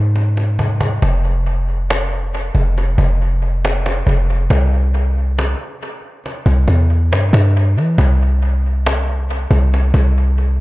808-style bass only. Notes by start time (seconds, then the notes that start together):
Already playing: G#2
1.02 F1
2.55 F1
2.98 F1
4.07 F1
4.50 C2
6.46 C2
6.68 E2
7.11 G2
7.33 G2
7.76 E3
7.98 C2
9.51 C2
9.94 C2